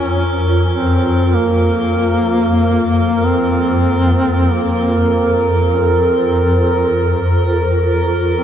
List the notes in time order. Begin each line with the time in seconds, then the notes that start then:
Already playing: F2 C#4 A#4
0.70 C4
1.34 A#3
3.26 C4
4.54 A#3
5.74 C#4
5.79 C4
8.37 C4